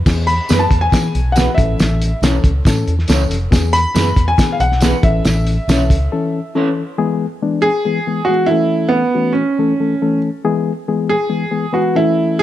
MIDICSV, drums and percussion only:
0, 0, Header, 1, 2, 480
1, 0, Start_track
1, 0, Key_signature, 4, "major"
1, 0, Tempo, 432900
1, 65, Time_signature, 4, 2, 24, 8
1, 13780, End_track
2, 0, Start_track
2, 0, Title_t, "Drums"
2, 67, Note_on_c, 9, 49, 96
2, 68, Note_on_c, 9, 36, 109
2, 72, Note_on_c, 9, 54, 78
2, 75, Note_on_c, 9, 38, 112
2, 178, Note_off_c, 9, 49, 0
2, 179, Note_off_c, 9, 36, 0
2, 183, Note_off_c, 9, 54, 0
2, 186, Note_off_c, 9, 38, 0
2, 314, Note_on_c, 9, 42, 71
2, 425, Note_off_c, 9, 42, 0
2, 542, Note_on_c, 9, 54, 83
2, 555, Note_on_c, 9, 42, 78
2, 560, Note_on_c, 9, 38, 117
2, 653, Note_off_c, 9, 54, 0
2, 666, Note_off_c, 9, 42, 0
2, 671, Note_off_c, 9, 38, 0
2, 783, Note_on_c, 9, 36, 86
2, 791, Note_on_c, 9, 42, 74
2, 894, Note_off_c, 9, 36, 0
2, 902, Note_off_c, 9, 42, 0
2, 1024, Note_on_c, 9, 36, 89
2, 1032, Note_on_c, 9, 54, 78
2, 1036, Note_on_c, 9, 42, 87
2, 1038, Note_on_c, 9, 38, 123
2, 1135, Note_off_c, 9, 36, 0
2, 1143, Note_off_c, 9, 54, 0
2, 1147, Note_off_c, 9, 42, 0
2, 1149, Note_off_c, 9, 38, 0
2, 1275, Note_on_c, 9, 42, 64
2, 1386, Note_off_c, 9, 42, 0
2, 1505, Note_on_c, 9, 42, 85
2, 1507, Note_on_c, 9, 54, 98
2, 1526, Note_on_c, 9, 38, 101
2, 1616, Note_off_c, 9, 42, 0
2, 1618, Note_off_c, 9, 54, 0
2, 1636, Note_off_c, 9, 38, 0
2, 1750, Note_on_c, 9, 36, 97
2, 1753, Note_on_c, 9, 42, 74
2, 1861, Note_off_c, 9, 36, 0
2, 1864, Note_off_c, 9, 42, 0
2, 1990, Note_on_c, 9, 54, 76
2, 1992, Note_on_c, 9, 42, 69
2, 1999, Note_on_c, 9, 38, 115
2, 2101, Note_off_c, 9, 54, 0
2, 2103, Note_off_c, 9, 42, 0
2, 2110, Note_off_c, 9, 38, 0
2, 2235, Note_on_c, 9, 42, 82
2, 2346, Note_off_c, 9, 42, 0
2, 2472, Note_on_c, 9, 54, 85
2, 2476, Note_on_c, 9, 42, 89
2, 2480, Note_on_c, 9, 38, 124
2, 2583, Note_off_c, 9, 54, 0
2, 2587, Note_off_c, 9, 42, 0
2, 2591, Note_off_c, 9, 38, 0
2, 2703, Note_on_c, 9, 36, 96
2, 2710, Note_on_c, 9, 42, 75
2, 2814, Note_off_c, 9, 36, 0
2, 2821, Note_off_c, 9, 42, 0
2, 2941, Note_on_c, 9, 36, 101
2, 2954, Note_on_c, 9, 54, 83
2, 2955, Note_on_c, 9, 42, 91
2, 2958, Note_on_c, 9, 38, 122
2, 3052, Note_off_c, 9, 36, 0
2, 3064, Note_off_c, 9, 54, 0
2, 3066, Note_off_c, 9, 42, 0
2, 3069, Note_off_c, 9, 38, 0
2, 3189, Note_on_c, 9, 42, 64
2, 3300, Note_off_c, 9, 42, 0
2, 3312, Note_on_c, 9, 38, 35
2, 3412, Note_on_c, 9, 42, 85
2, 3423, Note_off_c, 9, 38, 0
2, 3431, Note_on_c, 9, 54, 92
2, 3433, Note_on_c, 9, 38, 104
2, 3523, Note_off_c, 9, 42, 0
2, 3542, Note_off_c, 9, 54, 0
2, 3544, Note_off_c, 9, 38, 0
2, 3669, Note_on_c, 9, 42, 80
2, 3780, Note_off_c, 9, 42, 0
2, 3904, Note_on_c, 9, 36, 102
2, 3907, Note_on_c, 9, 42, 76
2, 3914, Note_on_c, 9, 38, 105
2, 3916, Note_on_c, 9, 54, 82
2, 4015, Note_off_c, 9, 36, 0
2, 4018, Note_off_c, 9, 42, 0
2, 4025, Note_off_c, 9, 38, 0
2, 4027, Note_off_c, 9, 54, 0
2, 4154, Note_on_c, 9, 42, 83
2, 4264, Note_off_c, 9, 42, 0
2, 4386, Note_on_c, 9, 54, 93
2, 4391, Note_on_c, 9, 42, 87
2, 4396, Note_on_c, 9, 38, 116
2, 4496, Note_off_c, 9, 54, 0
2, 4502, Note_off_c, 9, 42, 0
2, 4507, Note_off_c, 9, 38, 0
2, 4618, Note_on_c, 9, 36, 88
2, 4624, Note_on_c, 9, 42, 73
2, 4729, Note_off_c, 9, 36, 0
2, 4735, Note_off_c, 9, 42, 0
2, 4858, Note_on_c, 9, 36, 92
2, 4864, Note_on_c, 9, 54, 77
2, 4866, Note_on_c, 9, 42, 100
2, 4869, Note_on_c, 9, 38, 127
2, 4969, Note_off_c, 9, 36, 0
2, 4975, Note_off_c, 9, 54, 0
2, 4977, Note_off_c, 9, 42, 0
2, 4980, Note_off_c, 9, 38, 0
2, 5104, Note_on_c, 9, 42, 72
2, 5215, Note_off_c, 9, 42, 0
2, 5231, Note_on_c, 9, 38, 41
2, 5329, Note_on_c, 9, 42, 84
2, 5339, Note_on_c, 9, 54, 96
2, 5342, Note_off_c, 9, 38, 0
2, 5349, Note_on_c, 9, 38, 115
2, 5440, Note_off_c, 9, 42, 0
2, 5449, Note_off_c, 9, 54, 0
2, 5460, Note_off_c, 9, 38, 0
2, 5580, Note_on_c, 9, 36, 110
2, 5580, Note_on_c, 9, 42, 79
2, 5691, Note_off_c, 9, 36, 0
2, 5691, Note_off_c, 9, 42, 0
2, 5818, Note_on_c, 9, 42, 69
2, 5823, Note_on_c, 9, 54, 90
2, 5825, Note_on_c, 9, 38, 110
2, 5929, Note_off_c, 9, 42, 0
2, 5934, Note_off_c, 9, 54, 0
2, 5936, Note_off_c, 9, 38, 0
2, 6061, Note_on_c, 9, 42, 73
2, 6172, Note_off_c, 9, 42, 0
2, 6310, Note_on_c, 9, 42, 86
2, 6310, Note_on_c, 9, 54, 81
2, 6315, Note_on_c, 9, 38, 108
2, 6421, Note_off_c, 9, 42, 0
2, 6421, Note_off_c, 9, 54, 0
2, 6426, Note_off_c, 9, 38, 0
2, 6543, Note_on_c, 9, 36, 92
2, 6551, Note_on_c, 9, 42, 85
2, 6654, Note_off_c, 9, 36, 0
2, 6661, Note_off_c, 9, 42, 0
2, 13780, End_track
0, 0, End_of_file